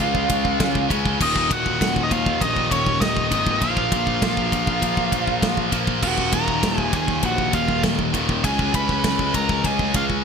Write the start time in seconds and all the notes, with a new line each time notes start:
Already playing: C#3 G#3 C#4 F4 F5
0.00 C#2, kick
0.15 kick
0.30 C#2, kick, ride
0.45 kick
0.60 C#2, kick, snare, ride
0.75 kick
0.89 C#2 C#3 G#3 C#4, kick, ride
1.06 kick
1.19 D#1 D#2 A#2 D#3 D#4 D#5, kick, crash
1.36 kick
1.51 D#1 F#4 F#5, kick, ride
1.66 kick
1.81 D#1, kick, snare, ride
1.96 kick
2.03 D#4 D#5
2.11 D#2 F4 F5, kick, ride
2.26 kick
2.41 A#1 D#4 D#5, kick, ride
2.56 kick
2.71 D#1 C#4 C#5, kick, ride
2.86 kick
3.01 D#1 D#4 D#5, kick, snare, ride
3.17 kick
3.31 G#1 D#2 A#2 D#3, kick, ride
3.47 kick
3.61 A#1 A#2 F3 A#3 F4 F5, kick, ride
3.77 kick
3.92 A#1, kick, ride
4.07 kick
4.22 A#1, kick, snare, ride
4.37 kick
4.52 A#1, kick, ride
4.67 kick
4.82 A#1, kick, ride
4.97 kick
5.12 A#1, kick, ride
5.27 kick
5.42 A#1, kick, snare, ride
5.57 kick
5.72 A#1 A#2 F3 A#3, kick, ride
5.87 kick
6.02 D#1 D#2 A#2 D#3 F#4 F#5, kick, crash
6.18 kick
6.33 D#1 A#4 A#5, kick, ride
6.48 kick
6.63 D#1, kick, snare, ride
6.76 G#4, kick
6.81 G#5
6.93 D#2 G#4 G#5, kick, ride
7.08 kick
7.23 A#1 F#4 F#5, kick, ride
7.38 kick
7.52 D#1 F4 F5, kick, ride
7.68 kick
7.83 D#1, kick, snare, ride
7.99 kick
8.13 D#1 D#2 A#2 D#3, kick, ride
8.29 kick
8.44 C#2 C#3 G#3 C#4 G#4 G#5, kick, ride
8.59 kick
8.73 C#2 B4 B5, kick, ride
8.89 kick
9.04 C#2, kick, snare, ride
9.19 kick
9.34 C#2 A#4 A#5, kick, ride
9.49 kick
9.64 C#2 G#4 G#5, kick, ride
9.79 kick
9.94 C#2 F4 F5, kick, ride
10.10 kick